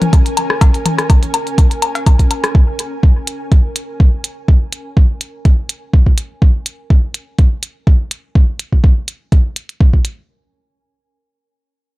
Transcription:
Already playing: C#4 A#4 G#5
0.02 closed hi-hat, mid tom
0.13 kick, closed hi-hat, low woodblock
0.26 closed hi-hat
0.37 closed hi-hat, low woodblock
0.50 cross-stick
0.61 kick, closed hi-hat, cowbell, low woodblock
0.74 closed hi-hat
0.86 closed hi-hat, mid tom, low woodblock
0.98 cross-stick, closed hi-hat
1.10 kick, closed hi-hat, low woodblock
1.23 closed hi-hat
1.34 closed hi-hat, low woodblock
1.47 closed hi-hat
1.58 kick, closed hi-hat, low woodblock
1.71 closed hi-hat
1.82 closed hi-hat, low woodblock
1.95 closed hi-hat, cowbell
2.06 kick, closed hi-hat, low woodblock
2.19 kick, closed hi-hat
2.31 closed hi-hat, low woodblock
2.44 cross-stick, closed hi-hat
2.55 kick
2.79 closed hi-hat
3.03 kick
3.27 closed hi-hat
3.52 kick, closed hi-hat
3.76 closed hi-hat
4.00 kick
4.24 closed hi-hat
4.48 kick
4.73 closed hi-hat
4.97 kick
5.21 closed hi-hat
5.45 kick, closed hi-hat
5.69 closed hi-hat
5.93 kick
6.06 kick
6.18 closed hi-hat
6.42 kick
6.66 closed hi-hat
6.90 kick
7.14 closed hi-hat
7.39 kick, closed hi-hat
7.63 closed hi-hat
7.87 kick
8.11 closed hi-hat
8.35 kick
8.59 closed hi-hat
8.72 kick
8.84 kick
9.08 closed hi-hat
9.32 kick, closed hi-hat
9.56 closed hi-hat
9.69 closed hi-hat
9.81 kick
9.93 kick
10.05 closed hi-hat

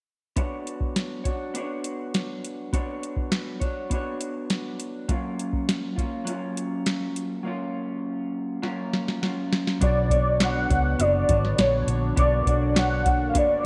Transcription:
0.36 B3 D4 F#4 C#5, kick, closed hi-hat
0.67 closed hi-hat
0.81 kick
0.96 snare, closed hi-hat
1.24 D4 F#4 C#5, kick, closed hi-hat
1.54 B3 D4 F#4, closed hi-hat
1.58 C#5
1.84 closed hi-hat
2.14 snare, closed hi-hat
2.44 closed hi-hat
2.73 B3 D4 F#4 C#5, kick, closed hi-hat
3.03 closed hi-hat
3.17 kick
3.32 snare, closed hi-hat
3.60 D4 F#4 C#5, kick, closed hi-hat
3.90 B3 D4 F#4, kick, closed hi-hat
3.95 C#5
4.21 closed hi-hat
4.50 snare, closed hi-hat
4.80 closed hi-hat
5.08 F#3 A#3 C#4 F4, kick, closed hi-hat
5.39 closed hi-hat
5.53 kick
5.69 snare, closed hi-hat
5.96 A#3 C#4 F4, kick, closed hi-hat
6.25 F#3 A#3 C#4, closed hi-hat
6.30 F4
6.57 closed hi-hat
6.86 snare, closed hi-hat
7.16 closed hi-hat
7.43 F#3 A#3 C#4
7.47 F4
8.62 F#3 A#3 C#4 F4, snare
8.93 snare
9.08 snare
9.21 F#3 A#3 C#4 F4, snare
9.53 snare
9.67 snare
9.81 B1 D3 B3 D4 F#4 C#5 D5, kick, closed hi-hat
10.10 D4 F#4 C#5, kick, closed hi-hat
10.40 B3 D4 F#4 C#5 F#5, snare, closed hi-hat
10.69 C#2 D4 F#4 C#5, kick, closed hi-hat
10.99 F#1 B3 D4 F#4 C#5 D5, closed hi-hat
11.29 G#1 D4 F#4 C#5, kick, closed hi-hat
11.45 snare
11.58 A#1 B3 D4 F#4 C#5, snare, closed hi-hat
11.87 A#1 D4 F#4 C#5, closed hi-hat
12.16 B1 A#3 B3 D4 F#4 C#5 D5, kick, closed hi-hat
12.46 B1 D4 F#4 C#5, kick, closed hi-hat
12.75 B3 D4 F#4 C#5 F#5, snare, closed hi-hat
13.05 D4 F#4 C#5, kick, closed hi-hat
13.29 F5
13.34 F#1 B3 D4 F#4 C#5, kick, closed hi-hat
13.38 D5

